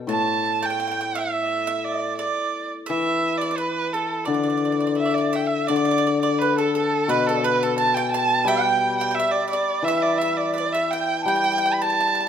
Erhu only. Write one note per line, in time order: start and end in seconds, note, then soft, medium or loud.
0.11 0.67 A5 medium
0.66 1.20 G5 medium
1.18 1.79 E5 medium
1.79 1.86 E5 medium
1.85 2.17 D5 medium
2.18 2.67 D5 medium
2.88 3.39 E5 medium
3.38 3.59 D5 medium
3.57 3.95 B4 medium
3.93 4.26 A4 medium
4.25 4.97 D5 medium
4.98 5.16 E5 medium
5.15 5.36 D5 medium
5.35 5.48 G5 medium
5.47 5.69 E5 medium
5.68 6.21 D5 medium
6.22 6.40 D5 medium
6.39 6.57 B4 medium
6.58 6.74 A4 medium
6.76 7.13 A4 medium
7.11 7.28 B4 medium
7.27 7.46 A4 medium
7.44 7.65 B4 medium
7.63 7.78 A4 medium
7.78 7.96 A5 medium
7.95 8.11 G5 medium
8.11 8.49 A5 medium
8.47 8.97 G5 medium
8.98 9.16 G5 medium
9.15 9.33 E5 medium
9.31 9.48 D5 medium
9.49 9.86 D5 medium
9.85 10.04 E5 medium
10.02 10.19 D5 medium
10.18 10.39 E5 medium
10.37 10.54 D5 medium
10.54 10.74 D5 medium
10.73 10.93 E5 medium
10.91 11.25 G5 medium
11.25 11.75 G5 medium
11.74 11.83 B5 medium
11.82 12.29 A5 medium